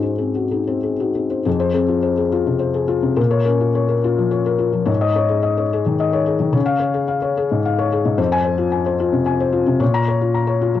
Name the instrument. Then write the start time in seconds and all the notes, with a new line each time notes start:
felt piano
Already playing: G#2 C#4 D#4 F#4 G#4 C5
0.02 D#4 C5
0.18 C4 G#4
0.35 F#4
0.51 D#4 G#4
0.67 C4 C5
0.83 G#4
1.00 D#4 F#4
1.15 C4 G#4
1.30 C5
1.45 F2 G#4
1.60 C5
1.73 C4 G#4
1.88 F4
2.03 C5
2.17 G#4
2.32 F4
2.47 C3
2.59 C5
2.74 G#4
2.88 F4
3.03 C3
3.16 A#2 A#4
3.31 C#5
3.45 C#4 A#4
3.60 F4
3.75 C#5
3.88 A#4
4.04 F4
4.18 F3
4.31 C#5
4.46 A#4
4.59 F4
4.73 F3
4.86 G#2 C#5
5.01 D#5
5.16 D#4 C#5
5.29 G#4
5.43 D#5
5.57 C#5
5.73 G#4
5.86 D#3
6.00 D#5
6.13 C#5
6.26 G#4
6.40 D#3
6.53 C#3 C#5
6.66 F5
6.80 C#5
6.94 G#4
7.08 F5
7.22 C#5
7.37 G#4
7.51 G#2
7.65 F5
7.78 C#5
7.92 G#4
8.05 G#2
8.18 F2 C5
8.32 G#5
8.44 C5
8.58 F4
8.72 G#5
8.86 C5
9.00 F4
9.13 C3
9.26 G#5
9.40 C5
9.52 F4
9.66 C3
9.80 A#2 C#5
9.94 A#5
10.08 C#5
10.21 F4
10.35 A#5
10.47 C#5
10.62 F4
10.75 F3